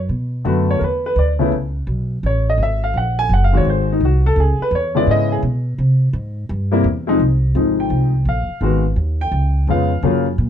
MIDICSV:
0, 0, Header, 1, 4, 480
1, 0, Start_track
1, 0, Tempo, 355030
1, 139, Time_signature, 4, 2, 24, 8
1, 14192, End_track
2, 0, Start_track
2, 0, Title_t, "Grand piano"
2, 0, Program_c, 0, 0
2, 604, Note_on_c, 0, 50, 61
2, 608, Note_on_c, 0, 57, 59
2, 618, Note_on_c, 0, 59, 63
2, 625, Note_on_c, 0, 66, 73
2, 654, Note_on_c, 0, 71, 67
2, 936, Note_off_c, 0, 71, 0
2, 953, Note_on_c, 0, 73, 82
2, 1071, Note_on_c, 0, 70, 53
2, 1093, Note_off_c, 0, 50, 0
2, 1095, Note_off_c, 0, 57, 0
2, 1100, Note_off_c, 0, 59, 0
2, 1104, Note_off_c, 0, 66, 0
2, 1106, Note_off_c, 0, 70, 0
2, 1109, Note_off_c, 0, 73, 0
2, 1136, Note_on_c, 0, 71, 76
2, 1415, Note_off_c, 0, 71, 0
2, 1436, Note_on_c, 0, 71, 86
2, 1591, Note_off_c, 0, 71, 0
2, 1605, Note_on_c, 0, 74, 73
2, 1783, Note_off_c, 0, 74, 0
2, 1881, Note_on_c, 0, 49, 69
2, 1888, Note_on_c, 0, 57, 62
2, 1895, Note_on_c, 0, 59, 62
2, 1907, Note_on_c, 0, 64, 76
2, 2042, Note_off_c, 0, 49, 0
2, 2045, Note_off_c, 0, 57, 0
2, 2049, Note_off_c, 0, 59, 0
2, 2055, Note_off_c, 0, 64, 0
2, 3060, Note_on_c, 0, 73, 79
2, 3341, Note_off_c, 0, 73, 0
2, 3374, Note_on_c, 0, 75, 82
2, 3522, Note_off_c, 0, 75, 0
2, 3552, Note_on_c, 0, 76, 86
2, 3827, Note_off_c, 0, 76, 0
2, 3835, Note_on_c, 0, 77, 79
2, 3993, Note_off_c, 0, 77, 0
2, 4022, Note_on_c, 0, 78, 77
2, 4302, Note_off_c, 0, 78, 0
2, 4311, Note_on_c, 0, 80, 104
2, 4470, Note_off_c, 0, 80, 0
2, 4509, Note_on_c, 0, 78, 78
2, 4644, Note_off_c, 0, 78, 0
2, 4654, Note_on_c, 0, 77, 82
2, 4768, Note_on_c, 0, 51, 59
2, 4774, Note_on_c, 0, 56, 57
2, 4780, Note_on_c, 0, 60, 54
2, 4791, Note_on_c, 0, 66, 71
2, 4796, Note_off_c, 0, 77, 0
2, 4829, Note_on_c, 0, 73, 78
2, 4964, Note_off_c, 0, 73, 0
2, 4997, Note_on_c, 0, 72, 80
2, 5270, Note_off_c, 0, 72, 0
2, 5304, Note_on_c, 0, 63, 64
2, 5390, Note_off_c, 0, 51, 0
2, 5393, Note_off_c, 0, 56, 0
2, 5396, Note_off_c, 0, 60, 0
2, 5401, Note_off_c, 0, 66, 0
2, 5448, Note_off_c, 0, 63, 0
2, 5473, Note_on_c, 0, 66, 74
2, 5749, Note_off_c, 0, 66, 0
2, 5764, Note_on_c, 0, 69, 90
2, 5918, Note_off_c, 0, 69, 0
2, 5949, Note_on_c, 0, 68, 76
2, 6227, Note_off_c, 0, 68, 0
2, 6250, Note_on_c, 0, 71, 89
2, 6400, Note_off_c, 0, 71, 0
2, 6424, Note_on_c, 0, 73, 79
2, 6690, Note_on_c, 0, 49, 66
2, 6698, Note_on_c, 0, 56, 66
2, 6704, Note_off_c, 0, 73, 0
2, 6711, Note_on_c, 0, 59, 61
2, 6716, Note_on_c, 0, 74, 90
2, 6718, Note_on_c, 0, 64, 80
2, 6873, Note_off_c, 0, 74, 0
2, 6908, Note_on_c, 0, 75, 96
2, 7186, Note_off_c, 0, 75, 0
2, 7195, Note_on_c, 0, 68, 85
2, 7292, Note_off_c, 0, 68, 0
2, 7311, Note_off_c, 0, 49, 0
2, 7315, Note_off_c, 0, 56, 0
2, 7321, Note_off_c, 0, 59, 0
2, 7325, Note_off_c, 0, 64, 0
2, 9080, Note_on_c, 0, 48, 79
2, 9089, Note_on_c, 0, 55, 75
2, 9092, Note_on_c, 0, 58, 76
2, 9103, Note_on_c, 0, 64, 84
2, 9242, Note_off_c, 0, 48, 0
2, 9247, Note_off_c, 0, 55, 0
2, 9248, Note_off_c, 0, 58, 0
2, 9254, Note_off_c, 0, 64, 0
2, 9561, Note_on_c, 0, 48, 83
2, 9569, Note_on_c, 0, 53, 73
2, 9574, Note_on_c, 0, 56, 68
2, 9584, Note_on_c, 0, 63, 84
2, 9722, Note_off_c, 0, 48, 0
2, 9726, Note_off_c, 0, 53, 0
2, 9729, Note_off_c, 0, 56, 0
2, 9734, Note_off_c, 0, 63, 0
2, 10206, Note_on_c, 0, 48, 51
2, 10218, Note_on_c, 0, 53, 52
2, 10218, Note_on_c, 0, 56, 51
2, 10231, Note_on_c, 0, 63, 61
2, 10546, Note_on_c, 0, 79, 81
2, 10940, Note_off_c, 0, 48, 0
2, 10946, Note_off_c, 0, 53, 0
2, 10946, Note_off_c, 0, 56, 0
2, 10953, Note_off_c, 0, 63, 0
2, 11146, Note_off_c, 0, 79, 0
2, 11203, Note_on_c, 0, 77, 80
2, 11648, Note_on_c, 0, 51, 63
2, 11659, Note_on_c, 0, 56, 64
2, 11668, Note_on_c, 0, 59, 56
2, 11677, Note_on_c, 0, 66, 74
2, 11925, Note_off_c, 0, 77, 0
2, 11932, Note_off_c, 0, 51, 0
2, 11937, Note_off_c, 0, 56, 0
2, 11942, Note_off_c, 0, 59, 0
2, 11946, Note_off_c, 0, 66, 0
2, 12455, Note_on_c, 0, 79, 98
2, 13059, Note_off_c, 0, 79, 0
2, 13095, Note_on_c, 0, 49, 62
2, 13103, Note_on_c, 0, 56, 55
2, 13106, Note_on_c, 0, 59, 55
2, 13120, Note_on_c, 0, 77, 81
2, 13121, Note_on_c, 0, 65, 66
2, 13374, Note_off_c, 0, 49, 0
2, 13378, Note_off_c, 0, 56, 0
2, 13379, Note_off_c, 0, 59, 0
2, 13387, Note_off_c, 0, 65, 0
2, 13565, Note_on_c, 0, 49, 71
2, 13576, Note_on_c, 0, 54, 60
2, 13583, Note_on_c, 0, 58, 63
2, 13591, Note_on_c, 0, 65, 75
2, 13842, Note_off_c, 0, 77, 0
2, 13848, Note_off_c, 0, 49, 0
2, 13853, Note_off_c, 0, 54, 0
2, 13857, Note_off_c, 0, 58, 0
2, 13861, Note_off_c, 0, 65, 0
2, 14192, End_track
3, 0, Start_track
3, 0, Title_t, "Upright bass"
3, 0, Program_c, 1, 32
3, 123, Note_on_c, 1, 47, 74
3, 597, Note_off_c, 1, 47, 0
3, 610, Note_on_c, 1, 42, 80
3, 1082, Note_off_c, 1, 42, 0
3, 1092, Note_on_c, 1, 40, 73
3, 1558, Note_off_c, 1, 40, 0
3, 1566, Note_on_c, 1, 38, 82
3, 2041, Note_off_c, 1, 38, 0
3, 2052, Note_on_c, 1, 37, 68
3, 2519, Note_off_c, 1, 37, 0
3, 2527, Note_on_c, 1, 35, 83
3, 3002, Note_off_c, 1, 35, 0
3, 3017, Note_on_c, 1, 33, 77
3, 3477, Note_off_c, 1, 33, 0
3, 3485, Note_on_c, 1, 32, 79
3, 3961, Note_off_c, 1, 32, 0
3, 3971, Note_on_c, 1, 34, 79
3, 4444, Note_off_c, 1, 34, 0
3, 4452, Note_on_c, 1, 30, 86
3, 4925, Note_off_c, 1, 30, 0
3, 4932, Note_on_c, 1, 32, 78
3, 5405, Note_off_c, 1, 32, 0
3, 5414, Note_on_c, 1, 36, 77
3, 5886, Note_off_c, 1, 36, 0
3, 5895, Note_on_c, 1, 37, 81
3, 6186, Note_off_c, 1, 37, 0
3, 6367, Note_on_c, 1, 40, 85
3, 6842, Note_off_c, 1, 40, 0
3, 6853, Note_on_c, 1, 44, 79
3, 7326, Note_off_c, 1, 44, 0
3, 7335, Note_on_c, 1, 47, 86
3, 7807, Note_off_c, 1, 47, 0
3, 7819, Note_on_c, 1, 48, 83
3, 8283, Note_off_c, 1, 48, 0
3, 8291, Note_on_c, 1, 44, 84
3, 8764, Note_off_c, 1, 44, 0
3, 8777, Note_on_c, 1, 43, 90
3, 9239, Note_off_c, 1, 43, 0
3, 9247, Note_on_c, 1, 40, 88
3, 9721, Note_off_c, 1, 40, 0
3, 9729, Note_on_c, 1, 36, 77
3, 10199, Note_off_c, 1, 36, 0
3, 10207, Note_on_c, 1, 32, 80
3, 10672, Note_off_c, 1, 32, 0
3, 10680, Note_on_c, 1, 36, 80
3, 11149, Note_off_c, 1, 36, 0
3, 11158, Note_on_c, 1, 34, 77
3, 11455, Note_off_c, 1, 34, 0
3, 11637, Note_on_c, 1, 32, 81
3, 12107, Note_off_c, 1, 32, 0
3, 12116, Note_on_c, 1, 39, 80
3, 12585, Note_off_c, 1, 39, 0
3, 12594, Note_on_c, 1, 37, 84
3, 13068, Note_off_c, 1, 37, 0
3, 13076, Note_on_c, 1, 41, 80
3, 13545, Note_off_c, 1, 41, 0
3, 13554, Note_on_c, 1, 42, 79
3, 14027, Note_off_c, 1, 42, 0
3, 14035, Note_on_c, 1, 46, 83
3, 14192, Note_off_c, 1, 46, 0
3, 14192, End_track
4, 0, Start_track
4, 0, Title_t, "Muted upright bass strokes"
4, 6201, Note_on_c, 9, 29, 40
4, 6336, Note_off_c, 9, 29, 0
4, 11473, Note_on_c, 9, 29, 35
4, 11608, Note_off_c, 9, 29, 0
4, 14192, End_track
0, 0, End_of_file